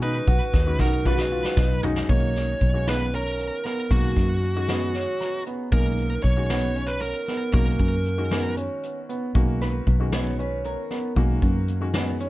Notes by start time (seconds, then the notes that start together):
Already playing: B2 D#3 G#3 C#4 F#4
0.01 D#4 B4, closed hi-hat
0.27 B1 F#4, kick, closed hi-hat
0.54 D#2, kick, snare, closed hi-hat
0.66 D#3 G#3 C#4 F#4
0.79 B1 D#4 F#4 A#4, kick, snare, closed hi-hat
1.05 D#3 G#3 C#4 F#4 B4, kick
1.18 snare
1.32 F4
1.44 snare
1.57 B1 D#4, kick, snare
1.83 D#3 G#3 C#4 D#4 F#4, floor tom
1.96 snare
2.09 B1 D#3 G#3 A#3 C#4 F#4 C#5, kick, closed hi-hat
2.36 snare, closed hi-hat
2.61 B1, kick, closed hi-hat
2.73 D#3 G#3 C#4 F#4
2.86 D#3 G#3 B3 C#4 F4 B4, snare, closed hi-hat
3.13 C#4 A#4, closed hi-hat
3.39 closed hi-hat
3.65 B3 A#4, snare, closed hi-hat
3.90 B1 D#3 G#3 A#3 C#4 F#4, kick, closed hi-hat
4.16 F#2, kick, snare, closed hi-hat
4.43 closed hi-hat
4.56 D#3 G#3 C#4 F#4
4.68 D#3 G#3 B3 C#4 G#4, snare, closed hi-hat
4.95 C#4, snare, closed hi-hat
5.20 A#5, snare, closed hi-hat
5.46 B3, closed hi-hat
5.72 B1 D#3 G#3 A#3 C#4 D#4 A#4, kick, closed hi-hat
5.98 closed hi-hat
6.23 B1 C#5, kick, closed hi-hat
6.36 D#3 G#3 C#4 F#4
6.49 D#3 G#3 B3 C#4 F#4, snare, closed hi-hat
6.76 C#4, closed hi-hat
6.88 B4
7.01 A#4, closed hi-hat
7.28 B3, snare, closed hi-hat
7.53 B1 D#3 G#3 A#3 C#4 F#4 A#4, kick, closed hi-hat
7.79 F#2, kick, closed hi-hat
8.05 closed hi-hat
8.18 D#3 G#3 C#4 F#4
8.31 D#3 G#3 B3 C#4 F#4, snare, closed hi-hat
8.57 C#4, closed hi-hat
8.83 closed hi-hat
9.09 B3, closed hi-hat
9.35 B1 D#3 G#3 A#3 C#4 F#4, kick, closed hi-hat
9.61 B4, snare, closed hi-hat
9.87 B1, kick, closed hi-hat
10.00 D#3 G#3 C#4 F#4
10.12 D#3 G#3 B3 C#4 F#4 C#5, snare, closed hi-hat
10.39 C#4 B4, closed hi-hat
10.64 A#4, closed hi-hat
10.90 B3, snare, closed hi-hat
11.16 B1 D#3 G#3 A#3 C#4 F#4, kick, closed hi-hat
11.42 F#2, kick, closed hi-hat
11.68 closed hi-hat
11.81 D#3 G#3 C#4 F#4
11.94 D#3 G#3 B3 C#4 F#4, snare, closed hi-hat
12.20 C#4, closed hi-hat